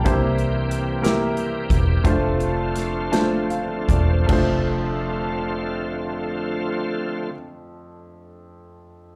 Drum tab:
CC |------|------|x-----|------|
HH |xxxxxx|xxxxxx|------|------|
SD |---o--|--oo--|------|------|
BD |o----o|o----o|o-----|------|